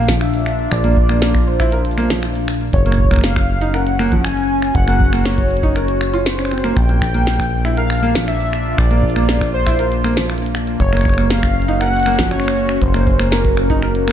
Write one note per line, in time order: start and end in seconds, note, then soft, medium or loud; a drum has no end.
0.00 0.69 A#1 medium
0.00 2.73 A#2 medium
0.00 2.73 D4 medium
0.00 2.73 F4 medium
0.00 0.23 F5 loud
0.08 0.20 F3 medium
0.08 kick medium
0.08 snare loud
0.08 closed hi-hat soft
0.21 0.71 E5 loud
0.21 finger snap medium
0.21 closed hi-hat medium
0.34 open hi-hat medium
0.46 finger snap medium
0.72 2.71 A#1 medium
0.72 1.49 D5 loud
0.72 finger snap medium
0.72 kick loud
0.72 closed hi-hat medium
0.84 0.95 A#3 medium
0.84 closed hi-hat medium
0.97 kick loud
1.09 1.20 A#3 medium
1.09 finger snap medium
1.09 closed hi-hat soft
1.22 1.33 A#3 medium
1.22 snare loud
1.22 closed hi-hat medium
1.35 finger snap medium
1.35 kick loud
1.35 closed hi-hat medium
1.47 2.23 C5 medium
1.60 1.72 E4 loud
1.60 finger snap medium
1.60 kick medium
1.60 closed hi-hat soft
1.72 1.79 A#4 medium
1.72 closed hi-hat medium
1.85 closed hi-hat medium
1.91 open hi-hat medium
1.98 2.08 A#3 loud
1.98 finger snap medium
2.10 2.22 F3 medium
2.10 snare loud
2.10 closed hi-hat soft
2.23 finger snap medium
2.23 closed hi-hat medium
2.35 open hi-hat medium
2.48 finger snap medium
2.54 closed hi-hat soft
2.73 4.72 F#1 medium
2.73 3.20 C#5 loud
2.73 kick loud
2.73 closed hi-hat medium
2.86 2.96 A#3 medium
2.86 closed hi-hat medium
2.92 finger snap soft
2.92 open hi-hat medium
2.98 kick medium
3.05 kick medium
3.11 3.22 A#3 medium
3.11 finger snap soft
3.11 kick medium
3.11 closed hi-hat soft
3.14 finger snap soft
3.16 finger snap soft
3.16 kick loud
3.19 finger snap soft
3.21 3.34 A#3 medium
3.21 3.76 F5 loud
3.21 finger snap soft
3.21 snare loud
3.21 closed hi-hat medium
3.31 6.77 C#4 medium
3.36 finger snap medium
3.36 kick loud
3.36 closed hi-hat medium
3.61 3.73 D#4 loud
3.61 closed hi-hat soft
3.74 3.80 A#4 medium
3.74 4.26 F#5 loud
3.74 finger snap medium
3.74 closed hi-hat medium
3.87 closed hi-hat medium
3.99 4.10 A#3 loud
3.99 finger snap medium
4.12 4.24 F3 medium
4.12 kick medium
4.12 closed hi-hat soft
4.24 4.74 G#5 loud
4.24 finger snap medium
4.24 closed hi-hat medium
4.37 open hi-hat medium
4.50 6.77 F#4 medium
4.62 finger snap medium
4.75 6.74 F#1 medium
4.75 5.27 F#5 loud
4.75 kick loud
4.75 closed hi-hat medium
4.88 4.98 A#3 medium
4.88 finger snap medium
4.88 closed hi-hat medium
5.00 kick loud
5.13 5.23 A#3 medium
5.13 finger snap medium
5.13 closed hi-hat soft
5.25 5.36 A#3 medium
5.25 6.28 C#5 loud
5.25 snare loud
5.25 closed hi-hat medium
5.38 kick loud
5.38 closed hi-hat medium
5.57 closed hi-hat soft
5.63 5.75 D#4 loud
5.63 kick medium
5.76 5.82 A#4 medium
5.76 finger snap soft
5.76 closed hi-hat medium
5.88 closed hi-hat medium
6.01 finger snap medium
6.01 open hi-hat medium
6.14 6.26 F4 loud
6.14 closed hi-hat soft
6.26 6.78 C5 loud
6.26 snare loud
6.26 closed hi-hat medium
6.39 6.49 C#4 medium
6.39 finger snap soft
6.39 open hi-hat medium
6.45 finger snap soft
6.51 6.62 C4 medium
6.51 finger snap soft
6.58 finger snap soft
6.64 6.75 A#3 loud
6.64 finger snap medium
6.64 closed hi-hat soft
6.77 8.76 A#1 medium
6.77 10.80 A#2 medium
6.77 7.77 G5 loud
6.77 finger snap medium
6.77 kick loud
6.77 closed hi-hat medium
6.89 7.00 A#3 medium
6.89 closed hi-hat soft
7.02 14.12 A#3 medium
7.02 finger snap medium
7.02 kick loud
7.02 open hi-hat medium
7.14 7.25 A#3 medium
7.14 closed hi-hat soft
7.27 7.38 A#3 medium
7.27 10.80 D4 medium
7.27 snare loud
7.27 closed hi-hat medium
7.40 finger snap soft
7.40 kick loud
7.40 closed hi-hat soft
7.65 7.77 E4 loud
7.65 finger snap medium
7.77 7.84 A#4 medium
7.77 8.24 F5 loud
7.77 closed hi-hat medium
7.90 finger snap medium
7.90 closed hi-hat soft
7.93 closed hi-hat soft
7.95 closed hi-hat soft
7.98 closed hi-hat soft
8.00 8.13 A#3 loud
8.00 closed hi-hat soft
8.15 8.27 F3 medium
8.15 kick medium
8.15 snare loud
8.15 closed hi-hat soft
8.22 10.80 F4 medium
8.28 8.75 E5 loud
8.28 finger snap medium
8.28 closed hi-hat medium
8.41 open hi-hat medium
8.53 finger snap medium
8.78 10.77 A#1 medium
8.78 9.50 D5 loud
8.78 finger snap medium
8.78 kick loud
8.78 closed hi-hat medium
8.91 9.01 A#3 medium
8.91 closed hi-hat soft
9.04 kick loud
9.10 closed hi-hat soft
9.16 9.27 A#3 medium
9.16 finger snap medium
9.29 9.39 A#3 medium
9.29 snare loud
9.29 closed hi-hat medium
9.41 finger snap medium
9.41 kick loud
9.41 closed hi-hat soft
9.54 10.26 C5 medium
9.66 9.78 E4 loud
9.66 finger snap medium
9.66 kick medium
9.66 closed hi-hat soft
9.79 9.85 A#4 medium
9.79 closed hi-hat medium
9.92 closed hi-hat medium
10.04 10.15 A#3 loud
10.04 finger snap medium
10.04 open hi-hat medium
10.17 10.29 F3 medium
10.17 snare loud
10.17 closed hi-hat soft
10.30 finger snap medium
10.30 closed hi-hat soft
10.38 closed hi-hat soft
10.42 open hi-hat medium
10.46 closed hi-hat medium
10.55 finger snap medium
10.67 closed hi-hat soft
10.80 12.79 F#1 medium
10.80 11.32 C#5 loud
10.80 kick loud
10.80 closed hi-hat medium
10.93 11.03 A#3 medium
10.93 finger snap medium
10.93 closed hi-hat soft
10.97 finger snap soft
11.01 14.12 C#4 medium
11.01 finger snap soft
11.05 finger snap soft
11.05 kick loud
11.05 open hi-hat medium
11.09 finger snap soft
11.14 finger snap soft
11.18 11.28 A#3 medium
11.18 finger snap medium
11.18 closed hi-hat soft
11.30 11.41 A#3 medium
11.30 14.12 F#4 medium
11.30 11.80 F5 loud
11.30 snare loud
11.30 closed hi-hat medium
11.43 finger snap medium
11.43 kick loud
11.43 closed hi-hat medium
11.62 closed hi-hat soft
11.68 11.80 D#4 loud
11.81 11.87 A#4 medium
11.81 12.28 F#5 loud
11.81 finger snap medium
11.81 closed hi-hat medium
11.93 closed hi-hat soft
11.97 closed hi-hat soft
12.00 closed hi-hat soft
12.03 12.17 A#3 loud
12.03 finger snap medium
12.03 closed hi-hat soft
12.19 12.31 F3 medium
12.19 kick medium
12.19 snare loud
12.19 closed hi-hat soft
12.31 12.83 C#5 loud
12.31 finger snap soft
12.31 closed hi-hat medium
12.40 finger snap medium
12.44 open hi-hat medium
12.48 finger snap medium
12.69 finger snap medium
12.82 14.12 F#1 medium
12.82 13.34 C5 loud
12.82 kick loud
12.82 closed hi-hat medium
12.94 13.05 A#3 medium
12.94 finger snap medium
12.94 closed hi-hat medium
13.07 kick loud
13.07 open hi-hat medium
13.19 13.30 A#3 medium
13.19 finger snap medium
13.19 closed hi-hat soft
13.32 13.43 A#3 medium
13.32 14.12 A#4 medium
13.32 snare loud
13.32 closed hi-hat medium
13.45 kick loud
13.45 closed hi-hat medium
13.57 finger snap medium
13.70 13.82 D#4 loud
13.70 kick medium
13.70 closed hi-hat soft
13.82 13.89 A#4 medium
13.82 finger snap medium
13.82 closed hi-hat medium
13.95 closed hi-hat medium
14.08 14.12 A#3 medium
14.08 finger snap medium
14.08 open hi-hat medium